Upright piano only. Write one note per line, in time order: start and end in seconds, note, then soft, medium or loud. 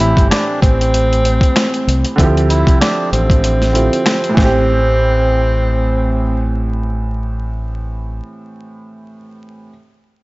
0.00 2.13 A2 medium
0.00 2.14 E3 medium
0.00 2.15 C4 medium
0.00 2.17 G4 medium
2.16 3.70 D3 medium
2.16 3.71 C4 medium
2.16 3.72 E4 medium
2.21 3.73 F3 medium
2.21 3.74 G4 medium
3.72 4.36 D3 soft
3.72 4.36 C4 soft
3.72 4.37 E4 soft
3.72 4.37 F4 soft
3.72 4.38 G4 medium
4.29 8.12 A2 medium
4.34 8.17 E3 medium
4.40 8.22 C4 medium
4.45 8.28 G4 medium